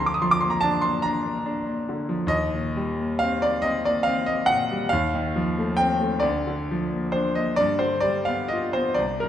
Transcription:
grand piano
Already playing: D2 A#5
0.00 D3 C6
0.06 D6
0.14 D#6
0.22 F3 C6
0.31 D6
0.41 A#3 C6
0.50 A#5
0.61 D4 A5
0.82 A#3 C6
1.02 D4 A#5
1.26 A#3
1.46 D4
1.67 A#3
1.89 D3
2.09 F3
2.27 D#2 D#5
2.54 A#2
2.77 G3
2.99 A#3
3.19 C4 F5
3.42 A#3 D5
3.62 C4 D#5
3.85 A#3 D5
4.03 C4 F5
4.26 A#3 D#5
4.46 A#2 F#5
4.71 G3
4.89 D#2 F5
5.14 D#3
5.36 F3
5.58 A3
5.77 C4 G5
6.01 A3
6.20 D2 D5
6.47 D3
6.71 F3
6.92 A#3
7.12 C5
7.16 D4
7.35 A#3 D#5
7.56 G2 D5
7.79 D3 C5
8.00 G3 D5
8.25 B3 F5
8.48 F4 D#5
8.73 B3 C5
8.94 C2 D5
9.20 G2 A#4

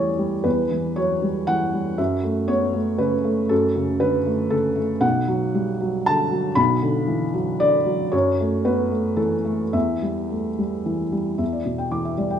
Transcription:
felt piano
Already playing: E2 E3 G3 A3 C#5 D5 E5
0.18 G3
0.44 E2 B4
0.71 E3
0.96 F#3 C#5
1.22 G3
1.47 E3 F#5
1.73 G3
1.98 F#2 E5
2.23 A3
2.48 B3 C#5
2.73 A3
2.98 C#3 B4
3.24 A3
3.49 F#2 A4
3.76 C#3
4.00 D3 B4
4.26 A3
4.50 C#3 A4
4.76 A3
5.01 B1 F#5
5.28 F#3
5.54 G3
5.80 F#3
6.06 D3 A5
6.31 F#3
6.55 B1 B5
6.83 D3
7.07 E3
7.34 F#3
7.60 D3 D5
7.85 F#3
8.12 F#2 C#5
8.39 A3
8.65 B3 B4
8.92 A3
9.16 E3 A4
9.45 A3
9.73 E2 E5
10.02 G3
10.30 A3
10.59 G3
10.86 E3
11.12 G3
11.38 E2 E5
11.52 D5
11.66 B2
11.78 G5
11.91 E3 D6
12.05 E5
12.18 G3 D5
12.30 G5

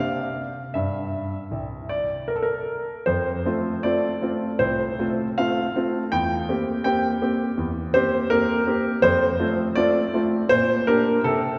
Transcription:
grand piano
Already playing: C3 C4 G4 F5
0.74 G2 E5
1.51 C2
1.89 D5
2.28 A#4
2.36 A4
2.42 A#4
3.06 F2 C5
3.45 A3 C4 F4
3.83 A3 C4 F4 D5
4.22 A3 C4 F4
4.59 C2 C5
4.99 A3 C4 F4
5.38 A3 C4 F4 F5
5.76 A3 C4 F4
6.12 E2 G5
6.49 A#3 C4 G4
6.84 A#3 C4 G4 G5
7.22 A#3 C4 G4
7.57 E2
7.94 A#3 C4 G4 C5
8.30 A#3 C4 G4 A#4
8.67 A#3 C4 G4
9.02 F2 C5
9.39 A3 C4 F4
9.76 A3 C4 F4 D5
10.14 A3 C4 F4
10.49 A#2 C5
10.87 A#3 D4 G4 A#4
11.24 C3 A4

